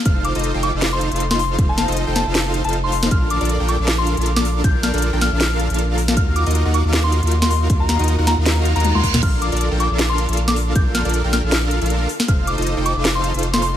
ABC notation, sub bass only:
X:1
M:4/4
L:1/16
Q:"Swing 16ths" 1/4=157
K:Bb
V:1 name="Sub bass" clef=bass
F,,,3 F,,,2 F,,,2 F,,,4 F,,,4- F,,, | F,,,3 F,,,2 F,,,2 F,,,4 F,,,4- F,,, | B,,,3 B,,,2 B,,,2 B,,,4 B,,,4- B,,, | B,,,3 B,,,2 B,,,2 B,,,4 B,,,4- B,,, |
E,,3 E,,2 E,,2 E,,4 E,,4- E,, | E,,3 E,,2 E,,2 E,,4 E,,2 E,, E,,2 | B,,,3 B,,,2 B,,,2 B,,,4 B,,,4- B,,, | B,,,3 B,,,2 B,,,2 B,,,4 B,,,3 z2 |
F,,,3 F,,,2 F,,,2 F,,,4 F,,,4- F,,, |]